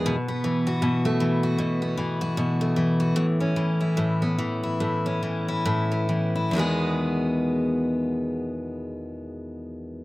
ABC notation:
X:1
M:4/4
L:1/16
Q:"Swing 16ths" 1/4=72
K:E
V:1 name="Steel-string acoustic guitar" clef=bass
B,, B, E, F B,, A, E, F B,, B, E, F B,, A, E, F | A,, C E, E A,, B, E, E A,, C E, E A,, B, E, E | [E,,B,,D,G,B,G]16 |]